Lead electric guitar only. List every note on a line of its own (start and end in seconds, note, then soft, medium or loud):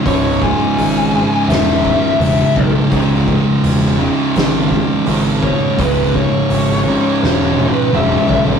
0.06 0.43 C#5 loud
0.43 1.53 G#5 loud
1.49 2.20 E5 medium
2.21 2.70 E5 medium
5.44 5.80 C#5 medium
5.82 6.16 B4 loud
6.16 7.19 C#5 medium
7.22 7.72 C#5 loud
7.72 7.90 B4 loud
7.95 8.45 E5 medium